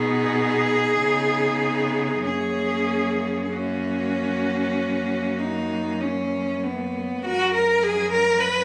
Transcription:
0.00 0.98 B2 medium
0.00 0.99 B3 medium
0.00 0.99 D#4 medium
0.00 2.23 G#4 loud
0.99 2.21 C#3 medium
0.99 2.26 B3 medium
0.99 2.24 D#4 medium
2.23 7.00 F#2 medium
2.23 3.52 A#3 medium
2.23 3.51 C#4 medium
2.23 3.42 G#4 medium
3.44 3.54 G#4 soft
3.51 7.00 A#3 medium
3.51 5.40 C#4 medium
3.51 6.01 F#4 medium
5.39 6.02 D#4 medium
6.01 6.65 C#4 medium
6.64 7.24 B3 medium
7.25 8.64 F#2 medium
7.25 7.52 F#4 medium
7.25 8.64 A#4 medium
7.54 7.85 A#4 medium
7.83 8.11 G#4 medium
8.12 8.41 A#4 loud
8.40 8.64 B4 medium

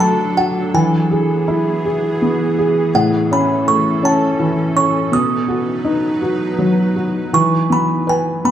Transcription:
0.00 0.70 D3 medium
0.00 0.72 F#3 medium
0.00 0.72 A3 soft
0.00 0.70 D4 soft
0.00 0.71 D4 medium
0.00 0.37 F#4 medium
0.00 0.72 A4 medium
0.00 0.38 A5 medium
0.37 0.73 F#4 medium
0.37 0.72 F#5 medium
0.74 2.90 E3 medium
0.74 5.08 E3 medium
0.74 2.92 B3 medium
0.74 2.92 G#4 medium
0.74 2.17 G#5 medium
1.11 1.84 G#4 medium
1.48 2.90 E4 soft
1.85 2.57 G#4 medium
2.22 2.92 B3 soft
2.59 2.93 G#4 medium
2.94 5.08 A2 medium
2.94 5.10 C#4 medium
2.94 5.10 A4 medium
2.94 3.32 F#5 medium
3.31 4.01 C#4 soft
3.31 3.69 B5 medium
3.68 5.08 A3 medium
3.68 3.84 C#6 medium
4.03 4.74 C#4 medium
4.03 4.79 A5 medium
4.40 5.10 E3 soft
4.76 5.11 C#4 soft
4.76 5.14 C#6 medium
5.12 7.29 B2 medium
5.12 7.31 F#3 medium
5.12 7.31 D#4 medium
5.12 7.31 B4 medium
5.12 6.93 D#6 medium
5.48 6.20 F#4 medium
5.85 7.29 D#4 soft
6.22 6.94 F#4 medium
6.58 7.31 F#3 soft
6.96 7.32 F#4 soft
7.33 8.51 E3 medium
7.33 7.72 C#6 medium
7.70 8.43 B3 soft
7.70 8.10 B5 medium
8.07 8.51 B4 medium
8.07 8.47 G#5 medium
8.45 8.51 B3 soft
8.45 8.51 B5 medium

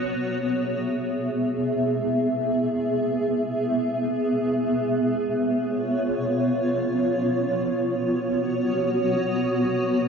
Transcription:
0.04 7.58 B3 medium
0.04 5.05 G#4 medium
0.04 5.05 E5 medium
5.09 7.59 F4 medium
5.09 7.59 C#5 medium
7.62 10.08 B3 medium
7.62 10.08 F#4 medium
7.62 10.08 C#5 medium

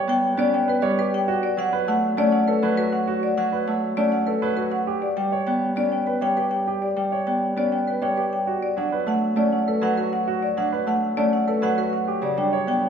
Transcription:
0.00 1.13 F#3 medium
0.00 0.81 G3 medium
0.00 0.12 C#5 medium
0.08 0.36 B3 medium
0.08 0.28 G5 medium
0.37 1.30 B3 medium
0.37 0.57 C#4 medium
0.37 0.57 D5 medium
0.54 0.72 G5 medium
0.68 0.87 B4 medium
0.68 0.88 B4 medium
0.82 1.30 G3 medium
0.82 1.02 C#5 medium
0.98 1.17 G4 medium
0.98 1.17 B4 medium
1.14 1.33 G5 medium
1.28 1.47 F#4 medium
1.43 1.62 D5 medium
1.57 2.61 F#3 medium
1.57 1.77 F#5 medium
1.73 1.92 B4 medium
1.88 2.16 A3 medium
1.88 2.07 F#5 medium
2.17 3.66 A3 medium
2.17 2.37 C#4 medium
2.17 2.37 D5 medium
2.32 2.52 F#5 medium
2.48 2.67 A4 medium
2.48 2.67 B4 medium
2.62 3.36 F#3 medium
2.62 2.82 B4 medium
2.77 2.97 F#4 medium
2.77 2.97 B4 medium
2.92 3.12 F#5 medium
3.07 3.27 F#4 medium
3.23 3.42 D5 medium
3.37 4.41 F#3 medium
3.37 3.57 F#5 medium
3.53 3.72 B4 medium
3.68 3.96 A3 medium
3.68 3.87 F#5 medium
3.97 4.90 A3 medium
3.97 4.17 C#4 medium
3.97 4.17 D5 medium
4.12 4.32 F#5 medium
4.27 4.47 A4 medium
4.27 4.47 B4 soft
4.42 4.90 F#3 medium
4.42 4.62 B4 medium
4.57 4.77 F#4 soft
4.57 4.77 B4 medium
4.72 4.92 F#5 medium
4.87 5.07 G4 medium
5.02 5.22 D5 medium
5.17 6.20 G3 medium
5.17 5.37 G5 medium
5.32 5.52 C#5 medium
5.47 5.75 B3 medium
5.47 5.67 G5 medium
5.76 7.26 B3 medium
5.76 5.97 C#4 medium
5.76 5.97 D5 medium
5.92 6.12 G5 soft
6.07 6.27 B4 soft
6.07 6.27 B4 medium
6.21 6.95 G3 medium
6.21 6.42 C#5 medium
6.21 6.42 G5 medium
6.37 6.57 G4 soft
6.37 6.57 B4 soft
6.51 6.71 G5 soft
6.67 6.87 G4 medium
6.82 7.02 D5 soft
6.97 8.00 G3 soft
6.97 7.17 G5 medium
7.12 7.32 C#5 medium
7.27 7.55 B3 soft
7.27 7.47 G5 medium
7.56 8.49 B3 medium
7.56 7.77 C#4 medium
7.56 7.77 D5 medium
7.72 7.92 G5 soft
7.87 8.07 B4 soft
8.02 8.49 G3 medium
8.02 8.22 C#5 medium
8.02 8.22 G5 medium
8.17 8.37 G4 soft
8.17 8.37 B4 soft
8.33 8.52 G5 soft
8.47 8.67 F#4 medium
8.63 8.82 D5 medium
8.77 9.80 F#3 soft
8.77 8.97 D4 soft
8.77 8.97 F#5 medium
8.92 9.12 B4 medium
9.07 9.35 A3 medium
9.07 9.27 F#5 medium
9.36 10.85 A3 medium
9.36 9.57 C#4 medium
9.36 9.57 D5 medium
9.52 9.72 F#5 soft
9.68 9.87 A4 medium
9.68 9.87 B4 soft
9.81 10.56 F#3 medium
9.81 10.02 B4 medium
9.81 10.02 F#5 medium
9.97 10.17 F#4 medium
9.97 10.17 B4 medium
10.13 10.32 F#5 medium
10.28 10.47 F#4 medium
10.43 10.62 D5 medium
10.57 11.61 F#3 medium
10.57 10.77 D4 medium
10.57 10.77 F#5 medium
10.72 10.92 B4 medium
10.87 11.16 A3 medium
10.87 11.07 F#5 medium
11.17 12.10 A3 medium
11.17 11.37 C#4 medium
11.17 11.37 D5 medium
11.33 11.52 F#5 soft
11.48 11.67 A4 medium
11.48 11.67 B4 medium
11.62 12.89 F#3 medium
11.62 11.82 B4 medium
11.62 11.82 F#5 medium
11.78 11.97 F#4 medium
11.78 11.97 B4 medium
11.93 12.12 F#5 medium
12.08 12.27 G4 medium
12.22 12.89 C#3 medium
12.22 12.42 D5 medium
12.37 12.89 G3 medium
12.37 12.57 D4 medium
12.37 12.57 G5 medium
12.53 12.72 C#5 medium
12.67 12.89 B3 medium
12.67 12.87 G5 medium

